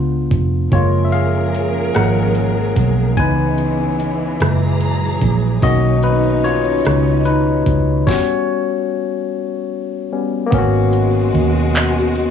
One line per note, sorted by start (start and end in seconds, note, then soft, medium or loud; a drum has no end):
0.00 0.33 C#2 medium
0.00 0.68 B3 medium
0.00 0.69 D4 soft
0.00 0.69 F4 medium
0.31 0.68 F1 medium
0.31 kick medium
0.31 closed hi-hat medium
0.72 1.91 F#1 medium
0.72 3.15 F3 medium
0.72 1.91 G#3 soft
0.72 1.91 A#3 soft
0.72 3.15 C#4 medium
0.72 0.89 F4 medium
0.72 3.15 G#4 medium
0.72 3.15 A#4 medium
0.72 0.88 C#5 medium
0.72 kick loud
0.72 closed hi-hat medium
1.05 1.12 E5 medium
1.12 1.91 G#4 medium
1.12 1.97 F5 medium
1.12 closed hi-hat soft
1.55 closed hi-hat medium
1.95 2.73 G#1 medium
1.95 2.32 F3 soft
1.95 2.32 G#3 soft
1.95 2.32 A#3 soft
1.95 3.14 A#4 medium
1.95 3.21 F#5 medium
1.95 cross-stick medium
1.95 closed hi-hat medium
2.35 closed hi-hat medium
2.76 3.18 B1 medium
2.76 kick medium
2.76 closed hi-hat medium
3.17 4.36 C#2 loud
3.17 4.38 C#3 medium
3.17 5.59 E3 medium
3.17 4.36 E3 soft
3.17 4.38 G#3 medium
3.17 4.38 B3 medium
3.17 4.36 B3 soft
3.17 4.36 D#4 medium
3.17 5.18 B4 medium
3.17 5.17 G#5 medium
3.17 kick medium
3.17 closed hi-hat medium
3.58 closed hi-hat soft
4.00 closed hi-hat medium
4.40 5.18 F#1 medium
4.40 5.58 A#2 soft
4.40 5.61 F#3 medium
4.40 5.58 G#3 soft
4.40 5.59 E4 medium
4.40 5.61 G#4 medium
4.40 5.61 A#5 medium
4.40 cross-stick loud
4.40 closed hi-hat medium
4.80 closed hi-hat medium
5.21 5.58 A#1 medium
5.21 kick medium
5.21 closed hi-hat medium
5.62 6.81 B1 loud
5.62 8.05 B2 medium
5.62 6.16 D#3 medium
5.62 6.17 A#3 soft
5.62 8.05 C#4 medium
5.62 6.17 C#4 medium
5.62 8.05 D#4 medium
5.62 6.01 F#4 medium
5.62 6.04 D#5 medium
5.62 kick medium
5.62 closed hi-hat medium
6.03 6.22 D#4 medium
6.03 6.22 B4 medium
6.03 closed hi-hat medium
6.44 7.22 F4 medium
6.44 7.28 C#5 medium
6.44 closed hi-hat soft
6.85 7.63 C#2 medium
6.85 cross-stick medium
6.85 closed hi-hat medium
7.25 8.04 D#4 medium
7.25 8.09 B4 medium
7.25 closed hi-hat medium
7.66 8.03 C#2 medium
7.66 kick medium
7.66 closed hi-hat medium
8.07 8.61 G3 medium
8.07 8.61 B3 soft
8.07 8.62 C#4 medium
8.07 10.08 F#4 medium
8.07 10.07 C#5 medium
8.07 kick loud
8.07 snare medium
10.12 10.48 G3 soft
10.12 10.48 B3 soft
10.12 10.49 C#4 soft
10.46 12.31 A#3 medium
10.46 12.31 B3 medium
10.52 11.30 G#1 loud
10.52 12.31 B2 medium
10.52 12.31 G#3 medium
10.52 12.31 C#4 medium
10.52 12.31 F#4 medium
10.52 kick loud
10.52 closed hi-hat medium
10.58 12.31 F#4 medium
10.93 closed hi-hat medium
11.34 12.31 D#2 medium
11.34 closed hi-hat medium
11.75 clap loud
11.75 closed hi-hat medium
12.16 closed hi-hat medium